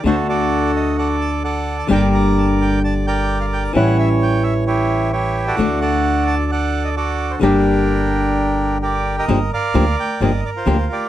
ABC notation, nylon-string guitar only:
X:1
M:4/4
L:1/8
Q:1/4=130
K:Gm
V:1 name="Nylon-string guitar"
[D,A,D^F]8 | [D,G,B,DG]8 | [=E,G,^C=E]8 | [D,A,D^F]8 |
[D,G,B,DG]8 | [D,F,B,DG] z [D,F,B,DG] z [D,F,B,DG] z [D,F,B,DG] z |]